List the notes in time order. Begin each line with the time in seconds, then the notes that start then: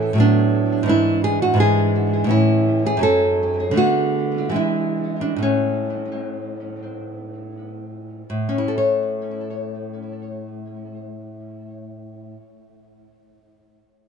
Already playing: A2 E3 C#4 A4
0.13 A2 F#3
0.18 B3 D4
0.83 G#2 E3
0.88 D4 E4
1.24 G#4
1.42 F#4
1.54 G#2 E3 D4
1.60 G#4
2.24 A2 E3
2.29 C#4 E4
2.86 G#4
2.97 F#2 F#3
3.01 C#4 A4
3.71 D3 A3
3.76 B3 F#4
4.49 E3 G#3
4.54 D4 E4
5.21 D4
5.36 A2 A3
5.43 C#4
8.30 A2
8.49 C#4
8.58 E4
8.68 A4
8.78 C#5